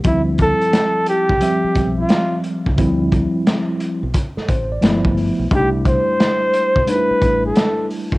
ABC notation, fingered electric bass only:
X:1
M:4/4
L:1/16
Q:"Swing 16ths" 1/4=88
K:Ddor
V:1 name="Fingered electric bass" clef=bass
D,,3 z4 C,, z2 B,,,2 z3 ^C,, | D,,3 z4 B,,, z2 A,,,2 G,,,3 B,,, | C,,3 z4 B,,, z2 A,,,2 z3 ^C,, |]